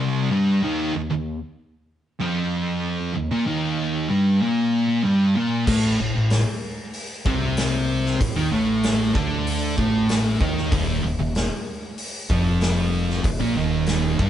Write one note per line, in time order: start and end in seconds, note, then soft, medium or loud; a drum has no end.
0.00 0.31 C2 loud
0.00 0.31 C3 loud
0.31 0.61 G2 loud
0.31 0.62 G3 loud
0.61 0.93 D#2 loud
0.61 0.94 D#3 loud
0.94 1.09 D#2 medium
1.11 1.36 D#2 medium
2.20 3.14 F2 loud
2.20 3.15 F3 loud
3.15 3.30 D#2 medium
3.31 3.45 A#2 medium
3.31 3.46 A#3 loud
3.46 4.09 D#2 loud
3.46 4.09 D#3 loud
4.10 4.40 G2 loud
4.10 4.41 G3 loud
4.41 5.03 A#2 medium
4.41 5.04 A#3 loud
5.03 5.35 G2 medium
5.03 5.35 G3 loud
5.35 5.66 A#2 loud
5.35 5.67 A#3 loud
5.67 5.97 A1 medium
5.67 5.98 A2 loud
5.67 5.98 A3 loud
5.67 kick loud
5.67 crash loud
5.99 6.14 A1 medium
5.99 6.14 A2 medium
6.15 6.45 A1 medium
6.15 6.40 A2 medium
6.30 snare loud
6.30 open hi-hat medium
6.93 open hi-hat medium
7.25 8.16 C2 loud
7.25 8.19 C3 loud
7.25 8.19 C4 loud
7.25 kick loud
7.57 snare loud
7.57 open hi-hat medium
8.06 snare soft
8.20 8.35 A1 medium
8.20 8.36 A2 medium
8.20 kick loud
8.20 open hi-hat medium
8.36 8.51 D#2 loud
8.36 8.51 D#3 loud
8.36 8.51 D#4 loud
8.51 9.11 A1 loud
8.51 9.14 A2 loud
8.51 9.14 A3 loud
8.83 snare loud
8.83 open hi-hat medium
9.15 9.74 D2 medium
9.15 9.77 D3 loud
9.15 9.77 D4 loud
9.15 kick loud
9.47 open hi-hat medium
9.78 10.37 A1 loud
9.78 10.40 A2 loud
9.78 10.41 A3 loud
9.78 kick medium
10.09 snare loud
10.09 open hi-hat medium
10.40 10.70 D#2 loud
10.40 10.71 D#3 loud
10.40 10.72 D#4 loud
10.40 kick loud
10.57 snare soft
10.72 11.02 D#1 loud
10.72 11.03 D#2 medium
10.72 11.04 D#3 medium
10.72 kick loud
10.72 open hi-hat medium
11.04 11.18 D#1 medium
11.04 11.19 D#2 medium
11.19 11.48 D#1 medium
11.19 11.45 D#2 medium
11.35 snare loud
11.35 open hi-hat medium
11.98 open hi-hat medium
12.30 13.20 F1 loud
12.30 13.23 F2 medium
12.30 13.24 F3 loud
12.30 kick loud
12.61 snare loud
12.61 open hi-hat medium
13.10 snare soft
13.24 13.39 D#1 medium
13.24 13.39 D#2 medium
13.24 kick medium
13.24 open hi-hat medium
13.40 13.55 A#1 loud
13.40 13.55 A#2 loud
13.40 13.55 A#3 loud
13.56 14.15 D#1 medium
13.56 14.18 D#2 medium
13.56 14.18 D#3 loud
13.86 snare loud
13.86 open hi-hat medium
14.19 14.30 G1 medium
14.19 14.30 G2 medium
14.19 14.30 G3 loud
14.19 kick loud